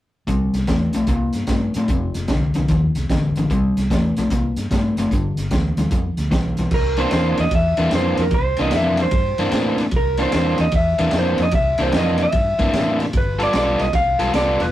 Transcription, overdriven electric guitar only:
0.28 0.66 C3 medium
0.28 0.66 G3 medium
0.68 0.92 C3 medium
0.68 0.92 A3 medium
0.95 1.07 C3 medium
0.95 1.08 A3 medium
1.08 1.46 C3 medium
1.08 1.47 A#3 medium
1.49 1.73 C3 medium
1.49 1.73 A3 medium
1.77 1.89 C3 medium
1.77 1.89 A3 medium
1.90 2.27 F2 medium
1.90 2.27 C3 medium
2.30 2.53 F2 medium
2.30 2.54 D3 medium
2.55 2.68 F2 medium
2.55 2.69 D3 medium
2.70 3.07 F2 medium
2.70 3.08 D#3 medium
3.11 3.34 F2 medium
3.11 3.35 D3 medium
3.37 3.50 F2 medium
3.37 3.50 D3 medium
3.51 3.88 C3 medium
3.51 3.88 G3 medium
3.91 4.14 C3 medium
3.91 4.14 A3 medium
4.18 4.30 C3 medium
4.18 4.30 A3 medium
4.31 4.69 C3 medium
4.31 4.69 A#3 medium
4.73 4.95 C3 medium
4.73 4.95 A3 medium
4.98 5.11 C3 medium
4.98 5.11 A3 medium
5.13 5.50 G2 medium
5.13 5.50 D3 medium
5.53 5.76 G2 medium
5.53 5.76 E3 medium
5.78 5.91 G2 medium
5.78 5.91 E3 medium
5.92 6.29 G2 medium
5.92 6.29 F3 medium
6.31 6.55 G2 medium
6.31 6.55 E3 medium
6.59 6.71 G2 medium
6.59 6.71 E3 medium
6.98 7.10 C3 medium
6.98 7.11 E3 medium
6.98 7.11 A#3 medium
6.98 7.12 D4 medium
7.11 7.42 C3 medium
7.11 7.42 E3 medium
7.11 7.43 A#3 medium
7.11 7.43 D4 medium
7.78 7.91 C3 medium
7.78 7.91 E3 medium
7.78 7.92 A#3 medium
7.78 7.92 D4 medium
7.92 8.23 C3 medium
7.92 8.23 E3 medium
7.92 8.23 A#3 medium
7.92 8.23 D4 medium
8.59 8.72 C3 medium
8.59 8.73 E3 medium
8.59 8.73 A#3 medium
8.59 8.73 D4 medium
8.73 9.03 C3 medium
8.73 9.04 E3 medium
8.73 9.04 A#3 medium
8.73 9.04 D4 medium
9.39 9.51 C3 medium
9.39 9.52 E3 medium
9.39 9.52 A#3 medium
9.39 9.52 D4 loud
9.53 9.83 C3 medium
9.53 9.83 E3 medium
9.53 9.83 A#3 medium
9.53 9.83 D4 medium
10.19 10.31 C3 medium
10.19 10.31 E3 medium
10.19 10.32 A#3 medium
10.19 10.33 D4 medium
10.32 10.63 C3 medium
10.32 10.63 E3 medium
10.32 10.63 A#3 medium
10.32 10.64 D4 medium
10.99 11.12 C3 medium
10.99 11.12 E3 medium
10.99 11.13 A#3 medium
10.99 11.13 D4 medium
11.13 11.43 C3 medium
11.13 11.44 E3 medium
11.13 11.44 A#3 medium
11.13 11.44 D4 medium
11.79 11.92 C3 medium
11.79 11.92 E3 medium
11.79 11.93 A#3 medium
11.79 11.93 D4 medium
11.94 12.24 C3 medium
11.94 12.24 E3 medium
11.94 12.24 A#3 medium
11.94 12.24 D4 medium
12.59 12.71 C3 medium
12.59 12.72 E3 medium
12.59 12.72 A#3 medium
12.59 12.73 D4 medium
12.73 13.03 C3 medium
12.73 13.04 E3 medium
12.73 13.04 A#3 medium
12.73 13.04 D4 medium
13.39 13.52 G3 medium
13.39 13.52 B3 medium
13.39 13.53 F4 medium
13.39 13.54 A4 medium
13.54 13.84 G3 medium
13.54 13.84 B3 medium
13.54 13.84 F4 medium
13.54 13.85 A4 medium
14.19 14.32 G3 medium
14.19 14.32 B3 medium
14.19 14.33 F4 medium
14.19 14.33 A4 medium
14.33 14.64 G3 medium
14.33 14.64 B3 medium
14.33 14.64 F4 medium
14.33 14.64 A4 medium

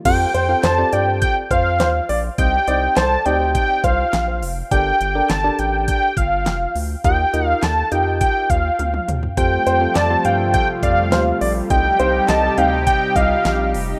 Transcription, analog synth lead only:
0.05 0.65 G5 loud
0.64 0.94 A5 loud
0.93 1.21 G5 loud
1.22 1.35 G5 loud
1.51 2.05 F5 medium
2.38 2.98 G5 loud
2.96 3.27 A5 loud
3.26 3.54 G5 loud
3.54 3.85 G5 loud
3.84 4.42 F5 medium
4.71 5.31 G5 loud
5.30 5.60 A5 loud
5.59 5.87 G5 loud
5.88 6.19 G5 loud
6.17 6.75 F5 medium
7.05 7.47 G5 loud
7.47 7.64 F5 loud
7.63 7.93 A5 loud
7.92 8.20 G5 loud
8.21 8.51 G5 loud
8.50 9.08 F5 medium
9.37 9.97 G5 loud
9.96 10.26 A5 loud
10.25 10.53 G5 loud
10.54 10.67 G5 loud
10.83 11.37 F5 medium
11.70 12.30 G5 loud
12.29 12.59 A5 loud
12.58 12.86 G5 loud
12.87 13.14 G5 loud
13.16 13.70 F5 medium

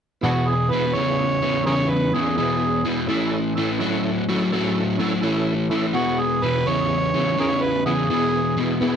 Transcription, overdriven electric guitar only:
0.23 0.67 E2 medium
0.23 0.67 B2 medium
0.72 0.93 E2 medium
0.72 0.93 B2 medium
0.95 1.38 E2 medium
0.95 1.38 C#3 medium
1.42 1.64 E2 medium
1.42 1.64 C#3 medium
1.67 2.10 E2 medium
1.67 2.10 C#3 medium
2.15 2.36 E2 medium
2.15 2.36 C#3 medium
2.38 2.81 E2 medium
2.38 2.81 B2 medium
2.85 3.06 E2 medium
2.85 3.07 B2 medium
3.09 3.52 A2 medium
3.09 3.53 E3 medium
3.57 3.78 A2 medium
3.57 3.79 E3 medium
3.80 4.24 A2 medium
3.80 4.24 F#3 medium
4.29 4.50 A2 medium
4.29 4.50 F#3 medium
4.52 4.96 A2 medium
4.52 4.96 F#3 medium
5.00 5.21 A2 medium
5.00 5.21 F#3 medium
5.23 5.67 A2 medium
5.23 5.67 E3 medium
5.71 5.93 A2 medium
5.71 5.93 E3 medium
5.94 6.38 E2 medium
5.94 6.38 B2 medium
6.43 6.64 E2 medium
6.43 6.64 B2 medium
6.66 7.10 E2 medium
6.66 7.10 C#3 medium
7.14 7.36 E2 medium
7.14 7.36 C#3 medium
7.38 7.81 E2 medium
7.38 7.82 C#3 medium
7.86 8.07 E2 medium
7.86 8.08 C#3 medium
8.10 8.53 E2 medium
8.10 8.53 B2 medium
8.57 8.79 E2 medium
8.57 8.79 B2 medium
8.81 8.96 E2 medium
8.81 8.96 B2 medium

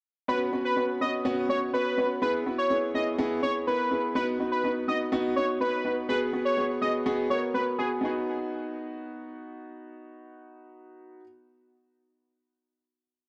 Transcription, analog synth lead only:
0.28 0.38 B4 loud
0.65 0.84 B4 medium
1.01 1.11 D#5 medium
1.49 1.59 C#5 medium
1.74 2.08 B4 medium
2.22 2.32 B4 loud
2.58 2.77 C#5 medium
2.95 3.04 D#5 medium
3.43 3.52 C#5 medium
3.67 4.01 B4 medium
4.15 4.25 B4 loud
4.52 4.71 B4 medium
4.88 4.98 D#5 medium
5.36 5.46 C#5 medium
5.61 5.95 B4 medium
6.09 6.18 B4 loud
6.45 6.64 C#5 medium
6.82 6.91 D#5 medium
7.30 7.40 C#5 medium
7.54 7.64 B4 medium
7.78 7.88 G#4 medium

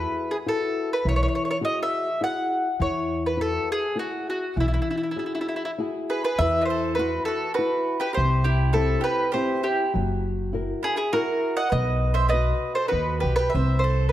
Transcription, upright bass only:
1.05 1.25 B1 medium
2.80 3.57 E2 medium
4.57 4.76 B1 medium
6.39 7.17 E2 medium
8.17 8.94 C2 medium
9.95 10.72 F#1 medium
11.72 12.50 B1 medium
12.92 13.20 D#2 medium
13.23 13.51 B1 medium
13.55 14.12 C2 medium

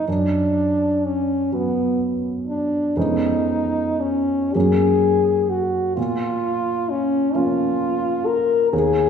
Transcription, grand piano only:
0.08 1.49 F#2 soft
1.52 2.92 F#3 soft
1.52 2.93 B3 soft
2.96 4.51 F2 soft
2.96 4.50 G#3 soft
2.96 4.51 B3 soft
2.96 4.51 C#4 soft
4.55 5.93 F#2 soft
4.55 5.93 F#3 soft
4.55 5.93 A#3 soft
4.55 5.94 C#4 soft
5.97 7.31 A#2 soft
7.35 8.69 F3 soft
7.35 8.70 A#3 soft
7.35 8.70 C#4 soft
8.73 9.10 D#2 soft

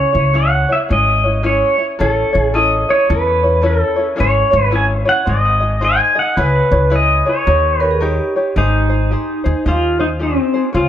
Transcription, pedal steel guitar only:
0.00 0.37 C#5 medium
0.36 0.71 F#5 medium
0.72 0.78 E5 medium
0.93 1.47 D#5 medium
1.46 1.87 C#5 medium
2.01 2.41 A4 medium
2.41 2.57 G#4 medium
2.55 2.90 D#5 medium
2.90 3.11 C#5 medium
3.10 3.66 B4 medium
3.66 4.07 A4 medium
4.20 4.64 C#5 medium
4.64 4.76 B4 medium
4.76 4.84 G#5 loud
5.09 5.29 F#5 loud
5.29 5.85 D#5 loud
5.85 6.19 G#5 loud
6.19 6.39 F#5 medium
6.40 6.95 B4 medium
6.96 7.29 D#5 medium
7.29 7.80 C#5 medium
7.80 7.99 B4 medium
8.58 9.68 D#4 medium
9.69 10.00 F4 medium
10.00 10.06 D#4 medium
10.23 10.63 C4 medium
10.77 10.89 F4 medium

